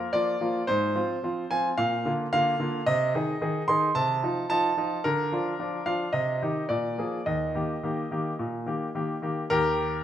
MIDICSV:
0, 0, Header, 1, 2, 480
1, 0, Start_track
1, 0, Key_signature, -3, "major"
1, 0, Tempo, 545455
1, 604, Time_signature, 4, 2, 24, 8
1, 5404, Tempo, 559180
1, 8748, End_track
2, 0, Start_track
2, 0, Title_t, "Grand piano"
2, 0, Program_c, 0, 0
2, 0, Note_on_c, 0, 70, 66
2, 112, Note_on_c, 0, 74, 74
2, 119, Note_on_c, 0, 53, 40
2, 122, Note_off_c, 0, 70, 0
2, 122, Note_on_c, 0, 58, 42
2, 123, Note_on_c, 0, 65, 46
2, 294, Note_off_c, 0, 53, 0
2, 295, Note_off_c, 0, 58, 0
2, 296, Note_off_c, 0, 65, 0
2, 359, Note_on_c, 0, 53, 43
2, 363, Note_on_c, 0, 58, 41
2, 364, Note_on_c, 0, 65, 44
2, 533, Note_off_c, 0, 53, 0
2, 536, Note_off_c, 0, 58, 0
2, 536, Note_off_c, 0, 65, 0
2, 592, Note_on_c, 0, 72, 76
2, 597, Note_off_c, 0, 74, 0
2, 603, Note_on_c, 0, 44, 57
2, 834, Note_on_c, 0, 53, 41
2, 836, Note_off_c, 0, 44, 0
2, 840, Note_on_c, 0, 60, 42
2, 842, Note_on_c, 0, 65, 45
2, 1011, Note_off_c, 0, 53, 0
2, 1014, Note_off_c, 0, 60, 0
2, 1015, Note_off_c, 0, 65, 0
2, 1085, Note_on_c, 0, 53, 42
2, 1090, Note_on_c, 0, 60, 41
2, 1092, Note_on_c, 0, 65, 45
2, 1258, Note_off_c, 0, 53, 0
2, 1261, Note_off_c, 0, 60, 0
2, 1262, Note_off_c, 0, 65, 0
2, 1319, Note_off_c, 0, 72, 0
2, 1325, Note_on_c, 0, 80, 73
2, 1328, Note_on_c, 0, 53, 43
2, 1329, Note_on_c, 0, 60, 43
2, 1333, Note_on_c, 0, 65, 45
2, 1469, Note_off_c, 0, 80, 0
2, 1500, Note_off_c, 0, 53, 0
2, 1501, Note_off_c, 0, 60, 0
2, 1503, Note_off_c, 0, 65, 0
2, 1562, Note_on_c, 0, 77, 72
2, 1567, Note_on_c, 0, 46, 53
2, 1800, Note_off_c, 0, 46, 0
2, 1808, Note_on_c, 0, 50, 38
2, 1813, Note_on_c, 0, 58, 38
2, 1817, Note_on_c, 0, 65, 43
2, 1852, Note_off_c, 0, 77, 0
2, 1981, Note_off_c, 0, 50, 0
2, 1984, Note_off_c, 0, 58, 0
2, 1987, Note_off_c, 0, 65, 0
2, 2047, Note_on_c, 0, 77, 79
2, 2053, Note_on_c, 0, 50, 44
2, 2054, Note_on_c, 0, 58, 42
2, 2059, Note_on_c, 0, 65, 47
2, 2224, Note_off_c, 0, 50, 0
2, 2225, Note_off_c, 0, 58, 0
2, 2227, Note_off_c, 0, 65, 0
2, 2284, Note_on_c, 0, 50, 40
2, 2289, Note_on_c, 0, 58, 39
2, 2293, Note_on_c, 0, 65, 42
2, 2457, Note_off_c, 0, 50, 0
2, 2460, Note_off_c, 0, 58, 0
2, 2463, Note_off_c, 0, 65, 0
2, 2492, Note_off_c, 0, 77, 0
2, 2521, Note_on_c, 0, 75, 85
2, 2526, Note_on_c, 0, 48, 60
2, 2758, Note_off_c, 0, 48, 0
2, 2766, Note_on_c, 0, 51, 41
2, 2772, Note_on_c, 0, 63, 40
2, 2776, Note_on_c, 0, 68, 45
2, 2939, Note_off_c, 0, 51, 0
2, 2942, Note_off_c, 0, 63, 0
2, 2945, Note_off_c, 0, 68, 0
2, 3005, Note_on_c, 0, 51, 43
2, 3007, Note_on_c, 0, 63, 41
2, 3009, Note_on_c, 0, 68, 47
2, 3178, Note_off_c, 0, 51, 0
2, 3179, Note_off_c, 0, 63, 0
2, 3180, Note_off_c, 0, 68, 0
2, 3207, Note_off_c, 0, 75, 0
2, 3236, Note_on_c, 0, 84, 76
2, 3243, Note_on_c, 0, 51, 41
2, 3249, Note_on_c, 0, 63, 42
2, 3249, Note_on_c, 0, 68, 45
2, 3416, Note_off_c, 0, 51, 0
2, 3420, Note_off_c, 0, 63, 0
2, 3420, Note_off_c, 0, 68, 0
2, 3456, Note_off_c, 0, 84, 0
2, 3476, Note_on_c, 0, 81, 78
2, 3479, Note_on_c, 0, 48, 52
2, 3715, Note_off_c, 0, 48, 0
2, 3724, Note_on_c, 0, 53, 37
2, 3728, Note_on_c, 0, 63, 36
2, 3733, Note_on_c, 0, 65, 39
2, 3897, Note_off_c, 0, 53, 0
2, 3900, Note_off_c, 0, 63, 0
2, 3903, Note_off_c, 0, 65, 0
2, 3944, Note_off_c, 0, 81, 0
2, 3957, Note_on_c, 0, 81, 83
2, 3960, Note_on_c, 0, 53, 41
2, 3966, Note_on_c, 0, 63, 41
2, 3970, Note_on_c, 0, 65, 48
2, 4135, Note_off_c, 0, 53, 0
2, 4139, Note_off_c, 0, 63, 0
2, 4141, Note_off_c, 0, 65, 0
2, 4198, Note_on_c, 0, 53, 39
2, 4203, Note_on_c, 0, 63, 39
2, 4209, Note_on_c, 0, 65, 44
2, 4374, Note_off_c, 0, 53, 0
2, 4377, Note_off_c, 0, 63, 0
2, 4380, Note_off_c, 0, 65, 0
2, 4437, Note_on_c, 0, 70, 72
2, 4441, Note_off_c, 0, 81, 0
2, 4446, Note_on_c, 0, 50, 55
2, 4679, Note_off_c, 0, 50, 0
2, 4683, Note_on_c, 0, 53, 38
2, 4686, Note_on_c, 0, 62, 37
2, 4687, Note_on_c, 0, 65, 42
2, 4857, Note_off_c, 0, 53, 0
2, 4858, Note_off_c, 0, 62, 0
2, 4859, Note_off_c, 0, 65, 0
2, 4921, Note_on_c, 0, 53, 40
2, 4925, Note_on_c, 0, 62, 38
2, 4926, Note_on_c, 0, 65, 40
2, 5095, Note_off_c, 0, 53, 0
2, 5098, Note_off_c, 0, 62, 0
2, 5098, Note_off_c, 0, 65, 0
2, 5156, Note_on_c, 0, 77, 65
2, 5157, Note_on_c, 0, 53, 37
2, 5160, Note_on_c, 0, 62, 37
2, 5161, Note_off_c, 0, 70, 0
2, 5166, Note_on_c, 0, 65, 41
2, 5333, Note_off_c, 0, 53, 0
2, 5335, Note_off_c, 0, 62, 0
2, 5339, Note_off_c, 0, 65, 0
2, 5377, Note_off_c, 0, 77, 0
2, 5390, Note_on_c, 0, 75, 66
2, 5397, Note_on_c, 0, 48, 47
2, 5632, Note_off_c, 0, 48, 0
2, 5645, Note_on_c, 0, 51, 34
2, 5648, Note_on_c, 0, 63, 35
2, 5649, Note_on_c, 0, 67, 36
2, 5818, Note_off_c, 0, 51, 0
2, 5820, Note_off_c, 0, 63, 0
2, 5820, Note_off_c, 0, 67, 0
2, 5842, Note_off_c, 0, 75, 0
2, 5873, Note_on_c, 0, 74, 61
2, 5881, Note_on_c, 0, 46, 49
2, 6117, Note_off_c, 0, 46, 0
2, 6124, Note_on_c, 0, 53, 35
2, 6127, Note_on_c, 0, 58, 34
2, 6135, Note_on_c, 0, 68, 35
2, 6300, Note_off_c, 0, 53, 0
2, 6301, Note_off_c, 0, 58, 0
2, 6306, Note_off_c, 0, 68, 0
2, 6363, Note_off_c, 0, 74, 0
2, 6365, Note_on_c, 0, 75, 60
2, 6368, Note_on_c, 0, 39, 48
2, 6604, Note_off_c, 0, 39, 0
2, 6614, Note_on_c, 0, 51, 33
2, 6614, Note_on_c, 0, 58, 32
2, 6618, Note_on_c, 0, 67, 36
2, 6787, Note_off_c, 0, 58, 0
2, 6788, Note_off_c, 0, 51, 0
2, 6790, Note_off_c, 0, 67, 0
2, 6856, Note_on_c, 0, 51, 35
2, 6860, Note_on_c, 0, 58, 34
2, 6863, Note_on_c, 0, 67, 40
2, 7029, Note_off_c, 0, 51, 0
2, 7032, Note_off_c, 0, 58, 0
2, 7034, Note_off_c, 0, 67, 0
2, 7095, Note_on_c, 0, 51, 35
2, 7101, Note_on_c, 0, 58, 36
2, 7103, Note_on_c, 0, 67, 38
2, 7268, Note_off_c, 0, 51, 0
2, 7272, Note_off_c, 0, 58, 0
2, 7273, Note_off_c, 0, 67, 0
2, 7336, Note_on_c, 0, 46, 40
2, 7377, Note_off_c, 0, 75, 0
2, 7568, Note_off_c, 0, 46, 0
2, 7568, Note_on_c, 0, 51, 32
2, 7572, Note_on_c, 0, 58, 30
2, 7581, Note_on_c, 0, 67, 36
2, 7743, Note_off_c, 0, 51, 0
2, 7746, Note_off_c, 0, 58, 0
2, 7751, Note_off_c, 0, 67, 0
2, 7814, Note_on_c, 0, 51, 35
2, 7818, Note_on_c, 0, 58, 37
2, 7821, Note_on_c, 0, 67, 38
2, 7986, Note_off_c, 0, 51, 0
2, 7989, Note_off_c, 0, 58, 0
2, 7991, Note_off_c, 0, 67, 0
2, 8047, Note_on_c, 0, 51, 33
2, 8052, Note_on_c, 0, 58, 35
2, 8059, Note_on_c, 0, 67, 37
2, 8222, Note_off_c, 0, 51, 0
2, 8225, Note_off_c, 0, 58, 0
2, 8229, Note_off_c, 0, 67, 0
2, 8287, Note_on_c, 0, 70, 82
2, 8291, Note_on_c, 0, 39, 57
2, 8302, Note_on_c, 0, 67, 59
2, 8730, Note_off_c, 0, 70, 0
2, 8739, Note_off_c, 0, 67, 0
2, 8748, Note_off_c, 0, 39, 0
2, 8748, End_track
0, 0, End_of_file